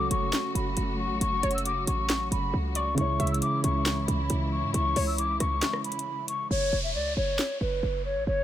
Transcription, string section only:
0, 0, Header, 1, 2, 480
1, 0, Start_track
1, 0, Key_signature, 3, "minor"
1, 0, Tempo, 441176
1, 1319, Time_signature, 4, 2, 24, 8
1, 9179, End_track
2, 0, Start_track
2, 0, Title_t, "String section"
2, 0, Program_c, 0, 48
2, 0, Note_on_c, 0, 49, 73
2, 0, Note_on_c, 0, 54, 70
2, 0, Note_on_c, 0, 57, 69
2, 0, Note_on_c, 0, 66, 86
2, 3195, Note_off_c, 0, 54, 0
2, 3196, Note_off_c, 0, 49, 0
2, 3200, Note_off_c, 0, 57, 0
2, 3200, Note_off_c, 0, 66, 0
2, 3239, Note_on_c, 0, 64, 88
2, 3240, Note_on_c, 0, 49, 76
2, 3240, Note_on_c, 0, 52, 72
2, 3240, Note_on_c, 0, 56, 69
2, 7041, Note_off_c, 0, 49, 0
2, 7041, Note_off_c, 0, 52, 0
2, 7041, Note_off_c, 0, 56, 0
2, 7041, Note_off_c, 0, 64, 0
2, 9179, End_track
0, 0, End_of_file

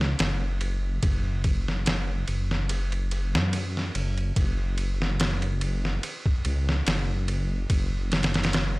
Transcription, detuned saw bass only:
0, 0, Header, 1, 2, 480
1, 0, Start_track
1, 0, Tempo, 833333
1, 595, Time_signature, 4, 2, 24, 8
1, 5065, End_track
2, 0, Start_track
2, 0, Title_t, "Detuned saw bass"
2, 0, Program_c, 0, 39
2, 0, Note_on_c, 0, 37, 79
2, 89, Note_off_c, 0, 37, 0
2, 114, Note_on_c, 0, 30, 85
2, 573, Note_off_c, 0, 30, 0
2, 593, Note_on_c, 0, 30, 94
2, 1293, Note_off_c, 0, 30, 0
2, 1313, Note_on_c, 0, 30, 85
2, 1927, Note_on_c, 0, 42, 96
2, 1936, Note_off_c, 0, 30, 0
2, 2255, Note_off_c, 0, 42, 0
2, 2276, Note_on_c, 0, 30, 94
2, 2489, Note_off_c, 0, 30, 0
2, 2513, Note_on_c, 0, 30, 87
2, 3453, Note_off_c, 0, 30, 0
2, 3718, Note_on_c, 0, 37, 80
2, 3930, Note_off_c, 0, 37, 0
2, 3957, Note_on_c, 0, 30, 91
2, 4415, Note_off_c, 0, 30, 0
2, 4433, Note_on_c, 0, 30, 90
2, 5065, Note_off_c, 0, 30, 0
2, 5065, End_track
0, 0, End_of_file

